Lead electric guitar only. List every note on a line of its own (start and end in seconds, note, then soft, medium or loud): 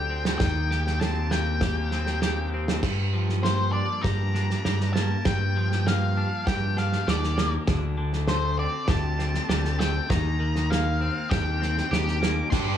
0.00 0.37 G5 medium
0.38 1.02 G5 medium
1.00 1.32 A5 medium
1.31 2.48 G5 medium
3.43 3.72 C5 medium
3.72 4.04 D5 medium
4.03 4.93 A#5 medium
4.93 5.25 A5 medium
5.26 5.87 G5 medium
5.88 6.47 F5 medium
6.47 6.78 G5 medium
6.79 7.09 F5 medium
7.09 7.50 D5 medium
8.28 8.56 C5 medium
8.59 8.90 D5 medium
8.89 9.83 A5 medium
9.80 10.11 G5 medium
10.10 10.72 A#5 medium
10.70 11.30 F5 medium
11.31 12.18 G5 medium
11.91 12.50 D6 medium
12.50 12.77 C6 medium